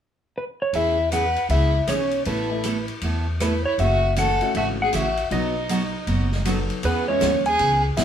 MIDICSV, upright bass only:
0, 0, Header, 1, 2, 480
1, 0, Start_track
1, 0, Key_signature, 4, "major"
1, 0, Tempo, 380952
1, 929, Time_signature, 4, 2, 24, 8
1, 10137, End_track
2, 0, Start_track
2, 0, Title_t, "Upright bass"
2, 0, Program_c, 0, 32
2, 921, Note_on_c, 0, 40, 81
2, 1692, Note_off_c, 0, 40, 0
2, 1877, Note_on_c, 0, 37, 85
2, 2291, Note_off_c, 0, 37, 0
2, 2357, Note_on_c, 0, 35, 73
2, 2771, Note_off_c, 0, 35, 0
2, 2853, Note_on_c, 0, 33, 90
2, 3620, Note_off_c, 0, 33, 0
2, 3803, Note_on_c, 0, 40, 80
2, 4575, Note_off_c, 0, 40, 0
2, 4763, Note_on_c, 0, 30, 85
2, 5535, Note_off_c, 0, 30, 0
2, 5728, Note_on_c, 0, 32, 82
2, 6138, Note_off_c, 0, 32, 0
2, 6216, Note_on_c, 0, 33, 80
2, 6623, Note_off_c, 0, 33, 0
2, 6689, Note_on_c, 0, 35, 85
2, 7459, Note_off_c, 0, 35, 0
2, 7646, Note_on_c, 0, 30, 78
2, 8417, Note_off_c, 0, 30, 0
2, 8615, Note_on_c, 0, 40, 87
2, 8998, Note_off_c, 0, 40, 0
2, 9096, Note_on_c, 0, 39, 80
2, 9502, Note_off_c, 0, 39, 0
2, 9567, Note_on_c, 0, 37, 80
2, 9977, Note_off_c, 0, 37, 0
2, 10043, Note_on_c, 0, 35, 72
2, 10137, Note_off_c, 0, 35, 0
2, 10137, End_track
0, 0, End_of_file